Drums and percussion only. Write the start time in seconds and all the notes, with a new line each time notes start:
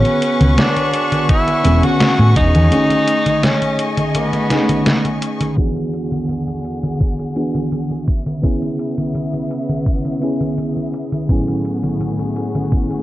0.05 closed hi-hat, high conga
0.22 closed hi-hat
0.41 closed hi-hat, high conga
0.58 snare, closed hi-hat, high conga
0.76 closed hi-hat, high conga
0.94 closed hi-hat
1.12 closed hi-hat, high conga
1.29 kick, closed hi-hat, high conga
1.48 closed hi-hat, high conga
1.65 closed hi-hat
1.83 closed hi-hat, high conga
2.00 snare, closed hi-hat, high conga
2.19 high conga
2.36 kick, closed hi-hat
2.55 closed hi-hat, high conga
2.72 closed hi-hat, high conga
2.90 closed hi-hat, high conga
3.08 closed hi-hat
3.26 closed hi-hat, high conga
3.43 snare, closed hi-hat, high conga
3.62 closed hi-hat, high conga
3.79 closed hi-hat
3.97 closed hi-hat, high conga
4.15 closed hi-hat, high conga
4.33 closed hi-hat, high conga
4.50 snare, closed hi-hat
4.69 closed hi-hat, high conga
4.86 snare, closed hi-hat, high conga
5.05 closed hi-hat, high conga
5.22 closed hi-hat
5.41 closed hi-hat, high conga
5.58 kick, closed hi-hat, high conga
5.76 closed hi-hat, high conga
5.93 closed hi-hat
6.12 closed hi-hat, high conga
6.29 closed hi-hat, high conga
6.48 closed hi-hat, high conga
6.65 closed hi-hat
6.83 closed hi-hat, high conga
7.00 kick, closed hi-hat, high conga
7.19 closed hi-hat, high conga
7.36 closed hi-hat
7.55 closed hi-hat, high conga
7.72 closed hi-hat, high conga
7.91 high conga
8.08 kick, closed hi-hat
8.26 closed hi-hat, high conga
8.44 kick, closed hi-hat, high conga
8.62 closed hi-hat, high conga
8.79 closed hi-hat
8.98 closed hi-hat, high conga
9.15 closed hi-hat, high conga
9.34 closed hi-hat, high conga
9.51 closed hi-hat
9.69 closed hi-hat, high conga
9.86 kick, closed hi-hat, high conga
10.05 closed hi-hat, high conga
10.22 closed hi-hat
10.41 closed hi-hat, high conga
10.58 closed hi-hat, high conga
10.76 high conga
10.94 closed hi-hat
11.12 closed hi-hat, high conga
11.29 kick, closed hi-hat, high conga
11.48 closed hi-hat, high conga
11.65 closed hi-hat
11.83 closed hi-hat, high conga
12.01 closed hi-hat, high conga
12.19 closed hi-hat, high conga
12.36 closed hi-hat
12.55 closed hi-hat, high conga
12.72 kick, closed hi-hat, high conga
12.91 closed hi-hat, high conga